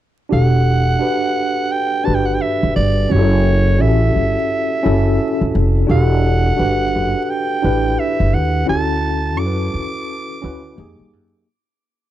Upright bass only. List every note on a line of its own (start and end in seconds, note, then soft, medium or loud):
0.32 0.94 E1 medium
2.07 2.37 G1 medium
2.63 2.74 F#1 medium
2.76 3.07 G1 medium
3.11 3.81 F#1 loud
3.81 4.11 A1 medium
4.16 4.34 G1 medium
4.86 5.16 F#1 loud
5.41 5.53 F#1 medium
5.55 5.86 F1 loud
5.89 6.52 E1 loud
6.59 6.95 G1 medium
6.95 7.13 F#1 medium
7.64 7.95 A1 medium
8.20 8.32 F#1 medium
8.34 8.64 D#2 medium
8.69 9.39 D2 medium
9.39 9.69 F#2 medium
9.74 9.92 E2 medium
10.44 10.74 D2 medium
10.78 10.96 F2 loud
10.99 11.13 G2 medium
11.13 11.44 F#2 medium